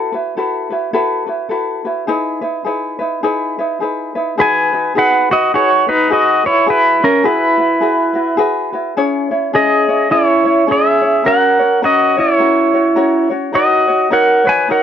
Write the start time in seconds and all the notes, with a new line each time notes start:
Already playing: E4 F#4 A4 B4
0.12 E4 F#4 B4
0.37 E4 F#4 A4 B4
0.70 E4 F#4 B4
0.93 E4 F#4 A4 B4
1.27 E4 F#4 B4
1.49 E4 F#4 A4 B4
1.85 E4 F#4 B4
2.07 D#4 E4 G#4 B4
2.41 D#4 E4 B4
2.64 D#4 E4 G#4 B4
2.99 D#4 E4 B4
3.23 D#4 E4 G#4 B4
3.59 D#4 E4 B4
3.80 D#4 E4 G#4 B4
4.15 D#4 E4 B4
4.38 D#4 F#4 G#4 B4 G#5
4.72 D#4 F#4 B4
4.95 D#4 F#4 G#4 B4 F#5
5.30 D#4 F#4 B4 D#5
5.54 D#4 F#4 G#4 B4 C#5
5.87 D#4 F#4 B4
6.10 D#4 F#4 G#4 B4 D#5
6.44 D#4 E4 F#4 B4 C#5
6.66 E4 F#4 G#4 B4
7.00 C#4 E4 F#4 B4
7.04 A#4
7.24 E4 F#4 G#4 B4
7.58 E4 F#4 B4
7.81 E4 F#4 G#4 B4
8.13 E4 F#4 B4
8.37 E4 F#4 G#4 B4
8.73 E4 F#4 B4
8.97 C#4 E4 G#4 C#5
9.31 C#4 E4 C#5
9.53 C#4 E4 G#4 C#5 D#5
9.88 C#4 E4 C#5
10.10 C#4 E4 G#4 C#5
10.44 C#4 E4 C#5
10.67 C#4 E4 G#4 C#5
10.71 G#4 E5
11.02 C#4 E4 C#5
11.24 C#4 F#4 A#4 C#5 F#5
11.59 C#4 F#4 C#5
11.82 C#4 F#4 A#4 C#5 D#5
12.17 C#4 E4 F#4 C#5
12.39 C#4 F#4 A#4 C#5
12.74 C#4 F#4 C#5
12.96 C#4 F#4 A#4 C#5
13.30 C#4 F#4 C#5
13.52 D#4 F#4 A#4 C#5 D#5
13.87 D#4 F#4 C#5
14.10 D#4 F#4 A#4 C#5 F#5
14.45 D#4 F#4 B4 C#5
14.49 G#5
14.68 D#4 F#4 A#4 C#5 F#5